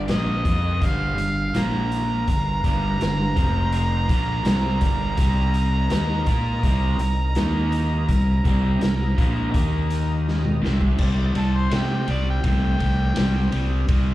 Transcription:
Already playing: F4 G4 A#4
0.07 A#1 A#2 F3 A#3 D#5, snare, closed hi-hat
0.44 F2 F3 C4 F4, kick, closed hi-hat
0.81 G1 G2 D3 G3 F5, kick, closed hi-hat
1.17 G1 G2 D3, closed hi-hat
1.53 A#1 A#2 F3 A#3 F4 A#4, snare, closed hi-hat
1.58 A#5
1.92 closed hi-hat
2.28 G1 G2 D3 B3 F4 A#4, kick, closed hi-hat
2.64 G1 G2 D3 G3, kick, closed hi-hat
3.00 G1 G2 D3, snare, closed hi-hat
3.35 F1 F2 C3 F3 C4 F4 C5, kick, closed hi-hat
3.72 closed hi-hat
4.08 A#1 A#2 F3 A#3 F4 A#4 D5, kick, closed hi-hat
4.44 C2 C3 G3 C4, snare, closed hi-hat
4.81 G1 G2 D3 G3, kick, closed hi-hat
5.17 C2 C3 G3 C4 D#4 A#4 D#5, kick, closed hi-hat
5.54 closed hi-hat
5.90 D#2 D#3 A#3 D#4, snare, closed hi-hat
6.26 A#2 A#3 F4 A#4, kick, closed hi-hat
6.63 C2 C3 G3 C4, kick, closed hi-hat
6.98 C2 C3 G3, closed hi-hat
7.35 D#2 D#3 A#3 D#4 A#4 D#5, snare, closed hi-hat
7.72 closed hi-hat
8.07 C2 C3 G3 E4 A#4 D#5, kick, closed hi-hat
8.45 C2 C3 G3 C4, kick, closed hi-hat
8.81 C2 C3 G3, snare, closed hi-hat
9.18 A#1 A#2 F3 A#3, kick, closed hi-hat
9.54 D#2 D#3 A#3 D#4 A#4 D#5, kick, closed hi-hat
9.90 closed hi-hat
10.28 snare
10.45 mid tom
10.62 C2 C3 G3 C4, snare
10.81 kick
10.98 C2 C3 G3, kick, crash
11.35 C2 C3 G3 A4, ride
11.57 C5
11.70 C3 A3 G5, snare, ride
12.07 C2 C3 G3, ride
12.11 D5
12.30 G5
12.43 C2 C3 A3 G5, kick, ride
12.78 C2 C3 A3, kick, ride
13.15 C2 C3 G3, snare, ride
13.52 C2 C3 G3, ride
13.88 C2 C3 G3, kick, ride

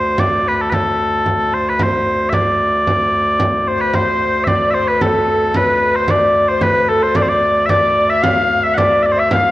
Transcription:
Already playing: D2 C5
0.18 D5, frame drum
0.45 B4, frame drum
0.56 B4
0.61 A4
0.70 A4 B4, frame drum
1.00 frame drum
1.26 frame drum
1.53 C5, frame drum
1.69 B4
1.79 C5, frame drum
2.07 frame drum
2.30 E5, frame drum
2.34 D5
2.87 frame drum
3.14 frame drum
3.40 frame drum
3.67 C5, frame drum
3.81 B4
3.94 C5, frame drum
4.21 frame drum
4.44 D5 E5, frame drum
4.49 D5
4.71 C5 E5, frame drum
4.88 B4
5.01 A4, frame drum
5.28 frame drum
5.54 B4, frame drum
5.95 C5
6.08 D5, frame drum
6.34 frame drum
6.48 C5
6.61 B4, frame drum
6.89 A4, frame drum
7.03 C5
7.15 D5, frame drum
7.22 C5
7.29 D5
7.66 D5 E5, frame drum
7.70 D5
7.97 frame drum
8.08 E5
8.22 F5, frame drum
8.50 frame drum
8.63 E5
8.74 D5 F#5, frame drum
9.03 D5 E5, frame drum
9.12 C5
9.17 E5
9.31 F5, frame drum

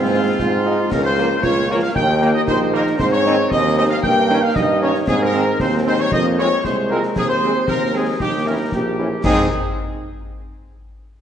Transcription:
Already playing: G#2 G#3 C4 F4
0.13 G#3 C4 F4
0.39 G#2 F4, concert bass drum, snare
0.66 G#3 C4 D#4 F4
0.91 C#2 C#4 A#4, concert bass drum, snare, crash
1.04 C5
1.18 F3 A#3 C#4 F4, snare
1.42 C#2 F4 C#5, concert bass drum, snare
1.69 F3 A#3 C#4 F4 C#5
1.82 F5
1.95 D#2 D#4 G5, concert bass drum
2.22 D#3 A#3 D#4, snare
2.34 D#5
2.46 A#1 D#4 C5, concert bass drum, snare
2.73 D#3 A#3 D#4 A#4
2.87 snare
2.99 G#2 C4 C5, concert bass drum, snare, crash
3.11 C#5
3.26 D#3 G#3 C4 D#4, snare
3.50 D#2 D#5, concert bass drum, snare
3.77 D#3 G#3 C4 D#4 D#5
3.89 F5
4.02 G2 A#3 G5, concert bass drum
4.30 D#3 A#3 C#4 D#4, snare
4.41 F5
4.55 G2 D#4 D#5, concert bass drum, snare
4.81 D#3 A#3 C#4 D#4 C#5
4.95 snare
5.07 G#2 C4 G#4, concert bass drum, snare, crash
5.20 A#4
5.33 D#3 G#3 C4 D#4, snare
5.60 D#2 C4 C5, concert bass drum, snare
5.86 D#3 G#3 C4 D#4 C5
5.99 C#5
6.11 F2 A#3 D#5, concert bass drum
6.38 G#3 C4 F4 C#5, snare
6.63 C2 G#3 C5, concert bass drum, snare
6.89 G#3 C4 F4 A#4
7.03 snare
7.16 D#2 C4 G#4, concert bass drum, snare, crash
7.28 C5
7.42 G#3 C4 G#4, snare
7.67 D#2 A#4, concert bass drum, snare
7.94 G#3 C4 G#4
8.20 D#2 D#4 G4, concert bass drum, snare
8.46 E3 A#3 C#4 E4 A#4
8.72 A#1 A#3 G4, concert bass drum, snare
8.98 E3 A#3 C#4 E4
9.23 G#2 D#3 G#3 C4 D#4 G#4 G#5, concert bass drum, snare, crash

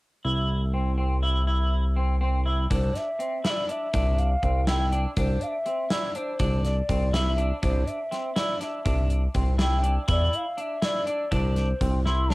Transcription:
0.25 C2 E4
0.74 C4
0.98 C4
1.23 E4
1.47 E4
1.97 C4
2.21 C4
2.46 E4
2.70 C2 D4 C5, kick, closed hi-hat
2.95 E5, snare, closed hi-hat
3.19 C4, closed hi-hat
3.44 E4 E5, snare, closed hi-hat
3.50 D5
3.69 D4 E5, closed hi-hat
3.94 C2 D4, kick, closed hi-hat
4.19 F5, closed hi-hat
4.42 C2 C4, kick, closed hi-hat
4.67 E4 G5, snare, closed hi-hat
4.92 D4, closed hi-hat
5.17 C2 D4 C5, kick, closed hi-hat
5.41 F5, closed hi-hat
5.47 E5
5.66 C4, closed hi-hat
5.90 E4 D5, snare, closed hi-hat
6.15 D4 C5, closed hi-hat
6.39 C2 D4, kick, closed hi-hat
6.65 D5, snare, closed hi-hat
6.89 C2 C4, kick, closed hi-hat
7.13 E4 E5, snare, closed hi-hat
7.38 D4, closed hi-hat
7.62 C2 D4 C5, kick, closed hi-hat
7.87 E5, closed hi-hat
8.11 C4, snare, closed hi-hat
8.36 E4 D5, snare, closed hi-hat
8.61 D4 E5, snare, closed hi-hat
8.85 C2 D4, kick, closed hi-hat
9.10 closed hi-hat
9.34 C2 C4, kick, closed hi-hat
9.58 E4 G5, snare, closed hi-hat
9.83 D4, closed hi-hat
10.08 E2 E4 D5, kick, closed hi-hat
10.33 F5, closed hi-hat
10.57 D4 E5, closed hi-hat
10.82 E4 D5, snare, closed hi-hat
11.07 D4, closed hi-hat
11.31 C2 D4 C5, kick, closed hi-hat
11.56 snare, closed hi-hat
11.81 C2 C4, kick, closed hi-hat
12.05 E4 C6, snare
12.30 C4 D4 A5, snare

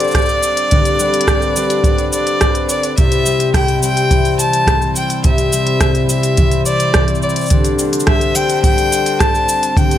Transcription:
Already playing: D3 G3 C4 D4 G4 C5 D5
0.00 closed hi-hat, shaker
0.04 shaker
0.08 shaker
0.11 C4, kick, cross-stick, closed hi-hat, shaker
0.15 shaker
0.18 shaker
0.22 shaker
0.26 shaker
0.29 shaker
0.43 shaker
0.57 closed hi-hat, shaker
0.71 D3 G4 B4, kick, closed hi-hat, shaker
0.85 closed hi-hat, shaker
0.99 G3 C4 G4, shaker
1.14 closed hi-hat, shaker
1.21 closed hi-hat
1.28 G3, kick, cross-stick, shaker
1.42 shaker
1.56 G3 C4 G4, shaker
1.70 closed hi-hat, shaker
1.84 G3, kick, closed hi-hat, shaker
1.98 closed hi-hat, shaker
2.13 D5, shaker
2.27 closed hi-hat, shaker
2.41 kick, cross-stick, closed hi-hat, shaker
2.55 closed hi-hat, shaker
2.69 D5, shaker
2.83 closed hi-hat, shaker
2.97 C3 C4 E4 G4 C5 E5, kick, closed hi-hat, shaker
3.12 closed hi-hat, shaker
3.26 G3 C4 G4, shaker
3.40 closed hi-hat, shaker
3.54 G3 G5, kick, cross-stick, closed hi-hat, shaker
3.68 closed hi-hat, shaker
3.83 G3 C4 G4 G5, shaker
3.97 closed hi-hat, shaker
4.11 E3, kick, closed hi-hat, shaker
4.25 closed hi-hat, shaker
4.39 A5, shaker
4.53 closed hi-hat, shaker
4.67 C4, kick, cross-stick, closed hi-hat, shaker
4.82 shaker
4.96 G5, shaker
5.10 closed hi-hat, shaker
5.24 C3 G4 E5, kick, closed hi-hat, shaker
5.38 closed hi-hat, shaker
5.52 G3 C4 G4, shaker
5.67 closed hi-hat
5.81 G3, kick, cross-stick, closed hi-hat, shaker
5.95 closed hi-hat, shaker
6.09 G3 C4 G4 E5, shaker
6.23 closed hi-hat, shaker
6.37 E3, kick, closed hi-hat, shaker
6.51 closed hi-hat, shaker
6.66 D5, shaker
6.80 closed hi-hat, shaker
6.94 C4, kick, cross-stick, closed hi-hat, shaker
7.08 closed hi-hat, shaker
7.15 shaker
7.22 D5, shaker
7.29 shaker
7.36 closed hi-hat, shaker
7.39 shaker
7.41 shaker
7.43 shaker
7.46 shaker
7.48 D3 D4, closed hi-hat, shaker
7.50 D3 G4 C5, kick, shaker
7.65 closed hi-hat, shaker
7.79 G3 C4 G4, shaker
7.93 closed hi-hat, shaker
8.00 shaker
8.07 G3 E5, kick, cross-stick, closed hi-hat
8.21 closed hi-hat, shaker
8.35 G3 C4 G4 G5, shaker
8.50 closed hi-hat, shaker
8.63 G3 G5, kick, closed hi-hat, shaker
8.78 closed hi-hat, shaker
8.92 shaker
9.06 closed hi-hat, shaker
9.20 C4 A5, kick, cross-stick, closed hi-hat, shaker
9.35 shaker
9.49 shaker
9.63 closed hi-hat, shaker
9.77 D3 G4 G5, kick, closed hi-hat, shaker
9.91 closed hi-hat, shaker

